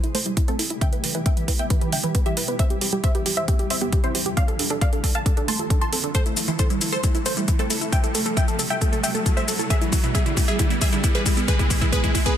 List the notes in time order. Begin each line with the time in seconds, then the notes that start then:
Already playing: C3 G3 A3 E4 G4, riser
0.04 E4, closed hi-hat
0.15 A3 A4 C5, open hi-hat
0.26 G3 E4, closed hi-hat
0.37 E4, kick, closed hi-hat
0.48 A3 C4 A4, closed hi-hat
0.59 E4 A4, open hi-hat
0.70 E4, closed hi-hat
0.81 B2 D3 E3 E5 G5, kick, closed hi-hat
0.93 B3 B4, closed hi-hat
1.04 E3 B4, open hi-hat
1.15 E3 B4, closed hi-hat
1.26 B3 E5 G5, kick, closed hi-hat
1.37 E3 B4, closed hi-hat
1.48 E4 B4, kick, open hi-hat
1.59 B3 E5 G5, closed hi-hat
1.70 E3 B4, kick, closed hi-hat
1.81 E3 B4, closed hi-hat
1.92 D3 E5 G5, open hi-hat
2.04 E3 B4, closed hi-hat
2.15 B3 B4, kick, closed hi-hat
2.26 E3 G4 E5, closed hi-hat
2.37 E4 B4, open hi-hat
2.48 B3 B4, closed hi-hat
2.59 E2 C3 E3 C4 C5 E5, kick, closed hi-hat
2.70 C4 G4, closed hi-hat
2.81 C4 G4, open hi-hat
2.93 G3 G4, closed hi-hat
3.04 G4 C5 E5, kick, closed hi-hat
3.15 B3 G4, closed hi-hat
3.26 G3 G4, open hi-hat
3.37 C5 E5, closed hi-hat
3.48 B3 G4, kick, closed hi-hat
3.59 G4, closed hi-hat
3.70 C4 C5 E5, open hi-hat
3.81 B3 G4, closed hi-hat
3.92 G4, kick, closed hi-hat
4.04 C4 E4 C5, closed hi-hat
4.15 G4 C5, open hi-hat
4.26 G4, closed hi-hat
4.37 D3 F3 A3 C4 F4 A4 D5 F5, kick, closed hi-hat
4.48 A4, closed hi-hat
4.59 D4 A4, open hi-hat
4.70 D4 A4, closed hi-hat
4.81 A4 D5 F5, kick, closed hi-hat
4.93 D4 A4, closed hi-hat
5.04 A4 D5, kick, open hi-hat
5.15 A4 F5 A5, closed hi-hat
5.26 D4 A4, kick, closed hi-hat
5.37 D4 A4, closed hi-hat
5.48 A3 A5 C6, open hi-hat
5.59 F4 A4, closed hi-hat
5.70 D4 A4, kick, closed hi-hat
5.81 F4 A5 C6, closed hi-hat
5.92 C4 A4, open hi-hat
6.04 D3 A4, closed hi-hat
6.15 C3 G3 A3 E4 A4 C5, kick, closed hi-hat, shaker
6.26 A3 E4, closed hi-hat, shaker
6.37 A3 E4, open hi-hat, shaker
6.48 E3 E4, closed hi-hat, shaker
6.59 E4 A4 C5, kick, closed hi-hat, shaker
6.70 G3 E4, closed hi-hat, shaker
6.81 E3 E4, open hi-hat, shaker
6.92 A4 C5, closed hi-hat, shaker
7.03 G3 E4, kick, closed hi-hat, shaker
7.15 E4, closed hi-hat, shaker
7.26 A3 A4 C5, open hi-hat, shaker
7.37 G3 E4, closed hi-hat, shaker
7.48 E4, kick, closed hi-hat, shaker
7.59 A3 C4 A4, closed hi-hat, shaker
7.70 E4 A4, open hi-hat, shaker
7.81 E4, closed hi-hat, shaker
7.92 G3 D4 E5 G5, kick, closed hi-hat, shaker
8.03 E4 A4, closed hi-hat, shaker
8.15 A3 A4, open hi-hat, shaker
8.26 A3 A4, closed hi-hat, shaker
8.37 E4 E5 G5, kick, closed hi-hat, shaker
8.48 A3 A4, closed hi-hat, shaker
8.59 A4, open hi-hat, shaker
8.70 E4 E5 G5, closed hi-hat, shaker
8.81 A3 A4, kick, closed hi-hat, shaker
8.92 A3 A4, closed hi-hat, shaker
9.03 G3 E5 G5, open hi-hat, shaker
9.15 A3 A4, closed hi-hat, shaker
9.26 E4 A4, kick, closed hi-hat, shaker
9.37 A3 C5 E5, closed hi-hat, shaker
9.48 A4, open hi-hat, shaker
9.59 E4 A4, closed hi-hat, shaker
9.70 B2 E3 G#3 E4 G#4 E5, kick, closed hi-hat, shaker
9.81 E3 E4, closed hi-hat, shaker
9.92 E3 E4, kick, open hi-hat, shaker
10.04 B2 E4, closed hi-hat, shaker
10.15 B3 G#4 E5, kick, closed hi-hat, shaker
10.26 D3 E4, closed hi-hat, shaker
10.37 B2 E4, kick, open hi-hat, shaker
10.48 E4 G#4 E5, closed hi-hat, shaker
10.59 D3 E4, kick, closed hi-hat, shaker
10.70 B3 E4, closed hi-hat, shaker
10.81 E3 G#4 E5, kick, open hi-hat, shaker
10.93 D3 E4, closed hi-hat, shaker
11.04 B3 E4, kick, closed hi-hat, shaker
11.15 E3 G#4 B4, closed hi-hat, shaker
11.26 E4, kick, open hi-hat, shaker
11.37 B3 E4, closed hi-hat, shaker
11.48 D3 G#4 B4, kick, closed hi-hat, shaker
11.59 B3 E4, kick, closed hi-hat, shaker
11.70 E3 E4, kick, open hi-hat, shaker
11.81 E3 E4, kick, closed hi-hat, shaker
11.92 B3 G#4 B4, kick, closed hi-hat, shaker
12.04 E3 E4, kick, closed hi-hat, shaker
12.15 E4, kick, open hi-hat, shaker
12.26 B3 G#4 B4, kick, closed hi-hat, shaker